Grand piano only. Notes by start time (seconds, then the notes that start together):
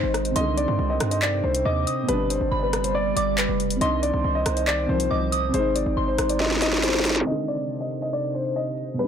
Already playing: C5
0.36 D#5
0.57 D5
0.90 D#5
1.11 D#5
1.22 D5
1.44 C5
1.65 D#5
2.08 B4
2.30 C5
2.63 B4
2.84 C5
2.95 D5
3.16 D5
3.38 B4
3.81 D#5
4.03 D5
4.35 D#5
4.57 D#5
4.67 D5
4.89 C5
5.11 D#5
5.54 C5
5.75 D5
6.08 C5
6.30 D5
6.40 D#5
6.62 D#5
6.83 C5
7.27 D#5
7.48 D5
7.81 D#5
8.02 D#5
8.13 D5
8.35 C5
8.56 D#5
8.99 B4